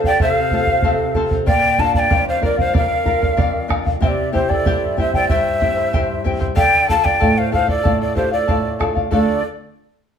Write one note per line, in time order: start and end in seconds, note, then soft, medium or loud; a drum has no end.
0.00 0.18 C3 medium
0.00 0.39 C4 soft
0.00 0.39 F4 soft
0.00 0.39 A4 medium
0.00 bombo low medium
0.05 0.20 C5 soft
0.05 0.20 D5 medium
0.05 0.21 F5 medium
0.05 0.20 G5 loud
0.20 0.82 C3 medium
0.20 0.51 A4 medium
0.20 1.12 C5 medium
0.20 0.52 C5 medium
0.20 0.53 F5 medium
0.20 1.13 F5 medium
0.20 bombo low medium
0.51 1.03 C4 soft
0.51 1.03 F4 soft
0.51 0.68 A4 medium
0.51 1.04 A4 medium
0.51 0.69 C5 medium
0.51 0.69 F5 medium
0.51 bombo low soft
0.67 0.83 C5 soft
0.67 0.84 F5 medium
0.67 bombo low medium
0.82 1.46 C3 medium
0.82 1.15 A4 medium
0.82 1.15 C5 medium
0.82 1.15 F5 medium
0.82 bombo low medium
1.14 1.40 C4 soft
1.14 1.40 F4 soft
1.14 1.41 A4 medium
1.14 1.32 A4 medium
1.14 1.32 C5 medium
1.14 1.31 F5 medium
1.14 bombo low soft
1.31 1.48 C5 soft
1.31 1.46 F5 soft
1.31 bombo low medium
1.46 2.09 A#2 medium
1.46 1.77 A#4 medium
1.46 1.83 D5 medium
1.46 1.79 D5 medium
1.46 1.79 F5 medium
1.46 1.81 G5 loud
1.46 bombo low medium
1.78 2.30 D4 medium
1.78 2.30 F4 soft
1.78 1.95 A#4 medium
1.78 2.30 A#4 medium
1.78 1.95 D5 medium
1.78 1.92 F5 medium
1.78 1.95 F5 medium
1.78 1.95 A5 medium
1.78 bombo low medium
1.94 2.25 D5 medium
1.94 2.09 D5 soft
1.94 2.09 F5 soft
1.94 2.00 A5 medium
1.94 bombo low medium
1.99 2.25 G5 medium
2.10 2.72 F2 medium
2.10 2.40 A#4 medium
2.10 2.41 D5 medium
2.10 2.42 F5 medium
2.10 bombo low medium
2.28 2.42 C5 medium
2.28 2.43 F5 medium
2.41 2.93 D4 soft
2.41 2.94 F4 soft
2.41 2.58 A#4 medium
2.41 2.93 A#4 soft
2.41 2.58 D5 medium
2.41 2.59 D5 medium
2.41 2.56 F5 medium
2.41 bombo low medium
2.45 2.59 A#4 medium
2.57 2.74 C5 medium
2.57 2.72 D5 soft
2.57 2.73 F5 medium
2.57 2.74 F5 medium
2.57 bombo low medium
2.73 3.36 F2 medium
2.73 3.05 A#4 medium
2.73 3.06 D5 medium
2.73 3.06 F5 medium
2.73 3.67 F5 medium
2.73 bombo low medium
2.77 3.67 A#4 medium
3.05 3.57 D4 medium
3.05 3.57 F4 soft
3.05 3.22 A#4 medium
3.05 3.57 A#4 medium
3.05 3.22 D5 medium
3.05 3.20 F5 medium
3.05 bombo low medium
3.21 3.36 D5 soft
3.21 3.37 F5 soft
3.21 bombo low medium
3.37 3.99 F2 medium
3.37 3.68 A#4 medium
3.37 3.68 D5 medium
3.37 3.69 F5 medium
3.37 bombo low medium
3.68 3.94 D4 soft
3.68 3.95 F4 soft
3.68 3.85 A#4 medium
3.68 3.95 A#4 medium
3.68 3.86 D5 medium
3.68 3.84 F5 medium
3.68 bombo rim medium
3.68 bombo low medium
3.86 4.01 D5 soft
3.86 4.02 F5 soft
3.86 bombo low medium
4.01 4.63 C3 medium
4.01 4.33 E4 medium
4.01 4.31 G4 medium
4.01 4.34 G4 medium
4.01 4.33 C5 medium
4.01 4.32 E5 medium
4.01 4.09 E5 medium
4.01 4.34 G5 medium
4.01 bombo low medium
4.08 4.32 D5 medium
4.32 4.84 C4 soft
4.32 4.84 E4 soft
4.32 4.50 E4 medium
4.32 4.84 G4 medium
4.32 4.52 G4 medium
4.32 4.51 C5 medium
4.32 4.49 C5 medium
4.32 4.50 E5 medium
4.32 4.49 G5 medium
4.32 bombo low medium
4.49 4.66 E4 soft
4.49 4.98 A4 medium
4.49 4.66 C5 soft
4.49 4.97 D5 medium
4.49 4.66 G5 soft
4.49 bombo low medium
4.65 5.27 G2 medium
4.65 4.98 E4 medium
4.65 4.98 G4 medium
4.65 4.98 C5 medium
4.65 4.97 E5 medium
4.65 4.98 G5 medium
4.65 bombo low medium
4.97 5.48 C4 soft
4.97 5.49 E4 soft
4.97 5.14 E4 medium
4.97 5.49 G4 medium
4.97 5.14 C5 medium
4.97 5.14 E5 medium
4.97 5.13 E5 medium
4.97 5.14 G5 medium
4.97 bombo low soft
5.14 5.29 E4 soft
5.14 5.30 C5 soft
5.14 5.30 D5 medium
5.14 5.30 G5 medium
5.14 5.28 G5 medium
5.14 bombo low medium
5.29 5.91 G2 medium
5.29 5.60 E4 medium
5.29 5.62 G4 medium
5.29 5.60 C5 medium
5.29 6.22 C5 medium
5.29 6.21 E5 medium
5.29 5.59 E5 medium
5.29 5.61 G5 medium
5.29 bombo low medium
5.61 6.12 C4 soft
5.61 5.77 E4 medium
5.61 6.13 E4 soft
5.61 6.13 G4 medium
5.61 5.76 C5 medium
5.61 5.77 E5 medium
5.61 5.76 G5 medium
5.61 bombo low medium
5.77 5.93 E4 soft
5.77 5.93 C5 soft
5.77 5.93 G5 soft
5.93 6.55 G2 medium
5.93 6.24 E4 medium
5.93 6.25 G4 medium
5.93 6.24 C5 medium
5.93 6.23 E5 medium
5.93 6.25 G5 medium
5.93 bombo low medium
6.24 6.50 C4 soft
6.24 6.40 E4 medium
6.24 6.51 E4 soft
6.24 6.51 G4 medium
6.24 6.39 C5 medium
6.24 6.41 E5 medium
6.24 6.38 G5 medium
6.24 bombo low soft
6.39 6.55 E4 soft
6.39 6.55 C5 soft
6.39 6.56 G5 medium
6.39 bombo low medium
6.55 7.19 D3 medium
6.55 6.86 A4 medium
6.55 6.87 D5 medium
6.55 6.87 F5 medium
6.55 6.86 G5 loud
6.55 bombo low medium
6.87 7.40 D4 soft
6.87 7.41 F4 soft
6.87 7.04 A4 medium
6.87 7.04 D5 medium
6.87 7.03 F5 medium
6.87 7.07 F5 medium
6.87 7.06 A5 loud
6.87 bombo low soft
6.91 7.41 A4 medium
7.04 7.39 D5 medium
7.04 7.19 D5 soft
7.04 7.20 F5 medium
7.04 7.39 G5 medium
7.04 bombo low medium
7.19 7.83 A2 medium
7.19 7.51 A4 medium
7.19 7.51 D5 medium
7.19 7.52 F5 medium
7.19 bombo low medium
7.38 7.53 C5 medium
7.38 7.53 F5 medium
7.51 8.03 D4 soft
7.51 8.03 F4 soft
7.51 7.68 A4 medium
7.51 8.03 A4 medium
7.51 7.68 C5 medium
7.51 7.68 D5 medium
7.51 7.67 F5 medium
7.51 7.68 F5 medium
7.51 bombo low soft
7.68 7.98 A4 medium
7.68 7.83 D5 soft
7.68 7.99 D5 medium
7.68 7.84 F5 medium
7.68 bombo low medium
7.83 8.46 A2 medium
7.83 8.15 A4 medium
7.83 8.15 D5 medium
7.83 8.16 F5 medium
7.83 bombo low medium
8.00 8.15 A4 medium
8.00 8.16 D5 medium
8.15 8.67 D4 soft
8.15 8.67 F4 soft
8.15 8.31 G4 medium
8.15 8.32 A4 medium
8.15 8.67 A4 medium
8.15 8.31 C5 medium
8.15 8.32 D5 medium
8.15 8.30 F5 medium
8.15 bombo low soft
8.31 8.77 A4 medium
8.31 8.47 D5 soft
8.31 8.77 D5 medium
8.31 8.48 F5 medium
8.48 9.10 A2 medium
8.48 8.78 A4 medium
8.48 8.79 D5 medium
8.48 8.79 F5 medium
8.48 bombo low medium
8.79 9.05 D4 soft
8.79 9.06 F4 soft
8.79 8.96 A4 soft
8.79 9.06 A4 medium
8.79 8.95 D5 medium
8.79 8.94 F5 medium
8.79 bombo rim soft
8.79 bombo low soft
8.95 9.11 D5 soft
8.95 9.12 F5 medium
8.95 bombo low soft
9.11 9.41 D3 medium
9.11 9.41 A3 soft
9.11 9.42 D4 soft
9.11 9.42 F4 soft
9.11 9.37 A4 medium
9.11 9.41 A4 medium
9.11 9.42 A4 medium
9.11 9.38 D5 medium
9.11 9.42 D5 medium
9.11 9.38 F5 medium
9.11 bombo low medium